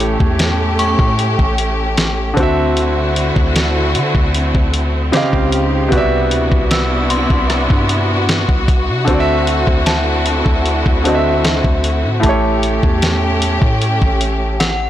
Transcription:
Already playing: 808-style bass A1, grand piano A2 A3 G4 C#5, string section A3 C#4 G4
0.00 closed hi-hat
0.20 808-style bass E2, kick
0.39 snare, closed hi-hat
0.79 synth bell C#6, closed hi-hat
0.99 808-style bass A2, kick
1.19 closed hi-hat
1.39 808-style bass A1, kick
1.58 closed hi-hat
1.97 snare, closed hi-hat
2.34 808-style bass D2, grand piano D3 C4, string section D3 C4 E4 F#4, kick, closed hi-hat
2.40 grand piano F#4 E5
2.77 closed hi-hat
3.16 closed hi-hat
3.36 808-style bass D2, kick
3.56 snare, closed hi-hat
3.95 808-style bass D3, closed hi-hat
4.15 808-style bass D2, kick
4.35 closed hi-hat
4.55 808-style bass D2, kick
4.74 closed hi-hat
5.12 grand piano C#3 C4 G4 D#5, string section C#3 D#4 F4 G4, snare, closed hi-hat
5.17 grand piano F5
5.33 808-style bass C#2, kick
5.52 closed hi-hat
5.89 808-style bass C2, grand piano C3 B3, string section C3 B3 D4 E4 F#4, kick, closed hi-hat
5.93 grand piano F#4 D5
5.97 grand piano E5
6.31 808-style bass D2, closed hi-hat
6.52 808-style bass C2, kick
6.71 synth bell E6, snare, closed hi-hat
7.10 synth bell C6, closed hi-hat
7.30 808-style bass C2, kick
7.50 cross-stick, closed hi-hat
7.70 808-style bass G2, kick
7.89 closed hi-hat
8.29 snare, closed hi-hat
8.49 808-style bass C2, kick
8.68 kick, closed hi-hat
8.88 808-style bass C3
9.05 808-style bass D2, grand piano D3 C4, string section D3 C4 E4, kick, closed hi-hat
9.11 grand piano F#4 D5
9.20 grand piano E5
9.47 closed hi-hat
9.67 808-style bass D2, kick
9.86 synth bell A5, snare, closed hi-hat
10.26 closed hi-hat
10.46 808-style bass D2, kick
10.66 closed hi-hat
10.86 808-style bass D2, kick
11.04 grand piano D3 C4 F#4, closed hi-hat
11.09 grand piano D#5
11.15 grand piano E5
11.45 snare, closed hi-hat
11.64 808-style bass D2, kick
11.84 closed hi-hat
12.04 808-style bass A2
12.20 808-style bass A1, grand piano A2 A3, string section A3 C#4 G4, kick, closed hi-hat
12.26 grand piano G4 C#5
12.63 closed hi-hat
12.83 808-style bass E2, kick
13.02 snare, closed hi-hat
13.42 closed hi-hat
13.62 808-style bass A2, kick
13.82 closed hi-hat
14.02 808-style bass A1, kick
14.21 closed hi-hat
14.60 synth bell F#5, snare, closed hi-hat

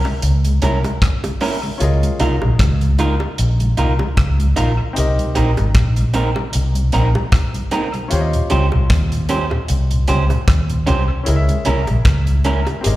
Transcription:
Already playing: grand piano C#4 E4 G#4 A#4 E5
0.05 tonewheel organ C#3 G#3, high bongo
0.22 fingered electric bass C#2, closed hi-hat
0.45 tonewheel organ C#3 G#3, closed hi-hat
0.62 fingered electric bass C2, tonewheel organ A#3 C#4 E4, clean electric guitar C#4 E4 A#4, closed hi-hat, high bongo
0.84 tonewheel organ C#3 G#3, muted clean electric guitar stroke, closed hi-hat, high bongo
1.02 kick, cross-stick, closed hi-hat
1.23 tonewheel organ C#3 G#3, closed hi-hat, high bongo
1.41 tonewheel organ A#3 C#4 E4, clean electric guitar C#4 E4 A#4, open hi-hat, low bongo
1.63 tonewheel organ C#3 G#3
1.78 fingered electric bass C#2, grand piano C#4 F4 G#4, closed hi-hat
1.82 grand piano A#4 D#5
2.03 tonewheel organ C#3 G#3, closed hi-hat
2.20 fingered electric bass C2, tonewheel organ A#3 D#4 F4, clean electric guitar D#4 F4 A#4, closed hi-hat, high bongo
2.42 fingered electric bass A#1, tonewheel organ C#3 G#3, high bongo
2.59 fingered electric bass C#2, kick, cross-stick, closed hi-hat
2.81 tonewheel organ C#3 G#3, closed hi-hat
2.99 tonewheel organ A#3 D#4 F4, clean electric guitar D#4 F4 A#4, closed hi-hat, low bongo
3.20 tonewheel organ C#3 G#3, high bongo
3.38 fingered electric bass A#1, closed hi-hat
3.60 tonewheel organ C#3 G#3, closed hi-hat
3.77 fingered electric bass C2, tonewheel organ A#3 D#4 F4, clean electric guitar D#4 F4 A#4, closed hi-hat
3.99 tonewheel organ C#3 G#3, muted clean electric guitar stroke, high bongo
4.17 fingered electric bass C#2, kick, cross-stick, closed hi-hat
4.38 tonewheel organ C#3 G#3, closed hi-hat
4.56 fingered electric bass A#1, tonewheel organ A#3 D#4 F4, clean electric guitar D#4 F4 A#4, closed hi-hat, low bongo
4.93 grand piano C4 D#4 G4, closed hi-hat
4.98 fingered electric bass C2, grand piano A#4 D#5
5.18 tonewheel organ C3 G3, closed hi-hat
5.35 fingered electric bass A#1, tonewheel organ A#3 C4 D#4, clean electric guitar C4 D#4 A#4, closed hi-hat, high bongo
5.57 fingered electric bass G#1, tonewheel organ C3 G3, closed hi-hat, high bongo
5.75 fingered electric bass A#1, kick, cross-stick, closed hi-hat
5.96 tonewheel organ C3 G3, closed hi-hat
6.13 tonewheel organ A#3 C4 D#4, clean electric guitar C4 D#4 A#4, closed hi-hat, low bongo
6.36 tonewheel organ C3 G3, high bongo
6.53 fingered electric bass C2, closed hi-hat
6.74 tonewheel organ C3 G3, closed hi-hat
6.92 fingered electric bass A#1, tonewheel organ A#3 C4 D#4, clean electric guitar C4 D#4 A#4, closed hi-hat
7.14 tonewheel organ C3 G3, muted clean electric guitar stroke, high bongo
7.32 kick, cross-stick, closed hi-hat
7.54 tonewheel organ C3 G3, closed hi-hat
7.71 tonewheel organ A#3 C4 D#4, clean electric guitar C4 D#4 A#4, closed hi-hat, low bongo
7.94 tonewheel organ C3 G3, closed hi-hat
8.08 grand piano C#4 F4 G4, closed hi-hat
8.12 fingered electric bass D#2, grand piano C5 C#5
8.21 grand piano D#5
8.33 tonewheel organ D#2 A#2, closed hi-hat
8.50 fingered electric bass C#2, tonewheel organ G3 C4 C#4 F4, clean electric guitar C#4 G4 C5, closed hi-hat, high bongo
8.72 fingered electric bass C2, tonewheel organ D#2 A#2, high bongo
8.90 fingered electric bass D#2, kick, cross-stick, closed hi-hat
9.12 tonewheel organ D#2 A#2, closed hi-hat
9.29 tonewheel organ G3 C4 C#4 F4, clean electric guitar C#4 G4 C5, closed hi-hat, low bongo
9.51 tonewheel organ D#2 A#2, high bongo
9.68 fingered electric bass C2, closed hi-hat
9.91 tonewheel organ D#2 A#2, closed hi-hat
10.08 fingered electric bass C#2, tonewheel organ G3 C4 C#4 F4, clean electric guitar C#4 G4 C5, closed hi-hat
10.29 tonewheel organ D#2 A#2, muted clean electric guitar stroke, closed hi-hat, high bongo
10.48 fingered electric bass D#2, kick, cross-stick, closed hi-hat
10.70 tonewheel organ D#2 A#2, closed hi-hat
10.86 fingered electric bass C2, tonewheel organ G3 C4 C#4 F4, clean electric guitar C#4 G4 C5, closed hi-hat, low bongo
11.23 grand piano C#4 E4 G#4, closed hi-hat
11.28 fingered electric bass C#2, grand piano A#4 D#5
11.36 grand piano E5
11.49 tonewheel organ C#3 G#3, closed hi-hat
11.65 fingered electric bass C2, tonewheel organ A#3 C#4 E4, clean electric guitar C#4 E4 A#4, closed hi-hat, high bongo
11.87 fingered electric bass A#1, tonewheel organ C#3 G#3, closed hi-hat, high bongo
12.05 fingered electric bass C#2, kick, cross-stick, closed hi-hat
12.27 tonewheel organ C#3 G#3, closed hi-hat
12.44 tonewheel organ A#3 C#4 E4, clean electric guitar C#4 E4 A#4, closed hi-hat, low bongo
12.67 tonewheel organ C#3 G#3, closed hi-hat, high bongo
12.81 grand piano C4 G4 G#4, closed hi-hat
12.86 fingered electric bass G#1, grand piano A#4 D#5

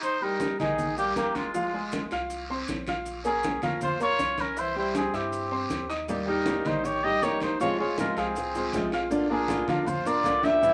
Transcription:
0.00 trumpet D#4, muted trumpet C5, high conga, long guiro, maracas
0.20 grand piano G3 G4 G5, trumpet D#4, muted trumpet A#4, high conga
0.40 high conga, short guiro, maracas
0.59 sub bass A#1, grand piano D#3 D#4 D#5, trumpet D#4, muted trumpet G#4, high conga, low conga, short guiro, maracas
0.79 high conga, low conga, long guiro, maracas
0.97 grand piano G3 G4 G5, trumpet A#3, muted trumpet G4, high conga, maracas
1.16 sub bass F1, trumpet A#3, grand piano A#3 A#4 A#5, muted trumpet G4, high conga, short guiro, maracas
1.35 trumpet G#3, muted trumpet F4, high conga, short guiro, maracas
1.54 grand piano F3 F4 F5, high conga, long guiro, maracas
1.73 grand piano G#3 G#4 G#5, high conga
1.92 high conga, short guiro, maracas
2.11 sub bass C2, grand piano F4 F5 F6, high conga, short guiro, maracas
2.30 high conga, long guiro, maracas
2.50 grand piano C4 C5 C6, high conga
2.68 sub bass A#1, high conga, short guiro, maracas
2.87 grand piano F4 F5 F6, high conga, short guiro, maracas
3.06 high conga, long guiro, maracas
3.24 grand piano A#3 A#4 A#5, trumpet C#4, muted trumpet G#4, high conga, maracas
3.43 high conga, short guiro, maracas
3.62 sub bass F2, grand piano F3 F4 F5, trumpet C#4, muted trumpet A#4, high conga, low conga, short guiro, maracas
3.81 trumpet F4, muted trumpet C5, high conga, low conga, long guiro, maracas
4.00 grand piano A#3 A#4 A#5, trumpet F4, muted trumpet C#5, high conga, maracas
4.19 sub bass C2, grand piano C#4 C#5 C#6, high conga, short guiro, maracas
4.38 trumpet C#4, muted trumpet A#4, high conga, short guiro, maracas
4.57 grand piano E3 E4 E5, trumpet E4, muted trumpet C5, high conga, long guiro, maracas
4.76 grand piano G3 G4 G5, trumpet E4, muted trumpet C5, high conga
4.95 trumpet C4, muted trumpet G#4, high conga, short guiro, maracas
5.13 sub bass G2, trumpet C4, grand piano E4 E5 E6, muted trumpet G4, high conga, short guiro, maracas
5.32 high conga, long guiro, maracas
5.51 grand piano C4 C5 C6, high conga
5.70 sub bass D#2, high conga, short guiro, maracas
5.89 grand piano D#4 D#5 D#6, short guiro, maracas
6.08 nylon-string guitar D#3 G3 A#3 D#4 G4, high conga, long guiro, maracas
6.27 grand piano G3 G4 G5, nylon-string guitar A#3 D#4 G4, trumpet D#4, muted trumpet A#4, high conga
6.46 nylon-string guitar D#3 G3 A#3 D#4 G4, high conga, short guiro, maracas
6.65 sub bass A#1, grand piano D#3 D#4 D#5, trumpet D#4, muted trumpet C5, high conga, low conga, short guiro, maracas
6.84 trumpet G4, muted trumpet C#5, muted nylon-string guitar stroke, high conga, long guiro, maracas
7.04 grand piano G3 G4 G5, nylon-string guitar A#3 D#4 G4, trumpet G4, muted trumpet D#5, high conga
7.21 sub bass F1, nylon-string guitar D#3 G3 A#3 D#4 G4, grand piano A#3 A#4 A#5, trumpet G4, muted trumpet C#5, high conga, short guiro, maracas
7.40 trumpet D#4, nylon-string guitar D#4 G4, muted trumpet C5, high conga, short guiro, maracas
7.44 nylon-string guitar A#3
7.60 nylon-string guitar C3 F3 G#3 C4 F4, grand piano F3 F4 F5, trumpet F4, muted trumpet C#5, high conga, long guiro, maracas
7.78 grand piano G#3 G#4 G#5, nylon-string guitar G#3 C4 F4, trumpet F4, muted trumpet C#5, high conga
7.97 nylon-string guitar C3 F3 G#3 C4 F4, trumpet F4, muted trumpet A#4, high conga, short guiro, maracas
8.16 sub bass C2, trumpet C4, grand piano F4 F5 F6, muted trumpet G#4, high conga, short guiro, maracas
8.35 muted nylon-string guitar stroke, high conga, long guiro, maracas
8.55 nylon-string guitar G#3 C4 F4, grand piano C4 C5 C6, high conga, maracas
8.73 sub bass A#1, nylon-string guitar C3 F3 G#3 C4 F4, high conga, short guiro, maracas
8.92 nylon-string guitar G#3 C4 F4, grand piano F4 F5 F6, short guiro, maracas
9.10 nylon-string guitar D3 A#3 D4 F4, high conga, long guiro, maracas
9.29 grand piano A#3 A#4 A#5, nylon-string guitar A#3 D4 F4, trumpet D4, muted trumpet G#4, high conga
9.48 nylon-string guitar D3 A#3 D4 F4, high conga, short guiro, maracas
9.66 sub bass F2, grand piano F3 F4 F5, trumpet D4, muted trumpet A#4, high conga, low conga, short guiro, maracas
9.86 trumpet F4, muted trumpet C5, muted nylon-string guitar stroke, high conga, low conga, long guiro, maracas
10.05 grand piano A#3 A#4 A#5, nylon-string guitar A#3 D4 F4, trumpet F4, muted trumpet D5, high conga, maracas
10.24 sub bass C2, nylon-string guitar D3 A#3 D4 F4, grand piano D4 D5 D6, high conga, short guiro, maracas
10.42 nylon-string guitar A#3 D4 F4, trumpet G4, muted trumpet E5, high conga, short guiro, maracas
10.62 nylon-string guitar C3 E3 G3 C4 E4, grand piano E3 E4 E5, high conga, long guiro, maracas

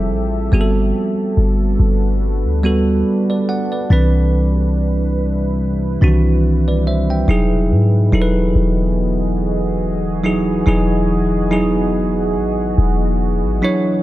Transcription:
Already playing: 808-style bass F1, ambient pad F3 C4 G4 A4 E5, tine electric piano G3 E4 F4 G#4 A4
0.11 808-style bass A1
0.52 808-style bass G1, tine electric piano G3 B3 F#4 G#4, ambient pad G3 D4 F#4 B4
0.61 tine electric piano A4
1.37 808-style bass G1
1.80 808-style bass G1
2.45 808-style bass D2
2.63 tine electric piano G3 B3 F#4 A4
3.30 tine electric piano B4 D5
3.49 tine electric piano D5 F#5
3.72 tine electric piano B4 D5
3.90 808-style bass C2, ambient pad C3 E4 B4, tine electric piano E3 C4 D4 B4
6.01 808-style bass C2, tine electric piano D#3 C4 D4 F#4
6.08 tine electric piano E3
6.68 tine electric piano B4 D5
6.87 tine electric piano C5 E5
7.10 tine electric piano E5 G5
7.28 808-style bass E1, ambient pad E3 B3 F#4 G#4 D#5, tine electric piano F#3 D#4 E4 G#4
7.71 808-style bass G#2
8.13 808-style bass E1, tine electric piano F#3 D#4 E4 A4
8.22 tine electric piano B4
8.55 808-style bass E1
10.24 tine electric piano F#3 D#4 E4 G#4
10.66 808-style bass E1, tine electric piano F#3 D#4 E4 G#4
11.51 tine electric piano F#3 D#4 E4 G#4
12.36 808-style bass G#1
12.78 808-style bass E1
13.43 808-style bass G#1
13.62 ambient pad D3 A3 E4 C#5, tine electric piano F#3 D4 E4 C#5

